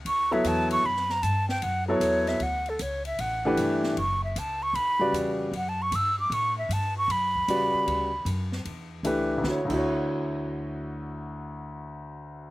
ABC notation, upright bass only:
X:1
M:4/4
L:1/8
Q:"Swing" 1/4=154
K:D
V:1 name="Upright bass" clef=bass
D,,2 E,,2 F,,2 G,,2 | F,,2 E,,2 D,,2 C,,2 | A,,,2 G,,,2 F,,,2 C,,2 | D,,2 E,,2 F,,2 G,,2 |
A,,2 G,,2 F,,2 E,, z | D,,2 F,,2 E,,2 C,,2 | D,, D,,6- D,,- | D,,8 |]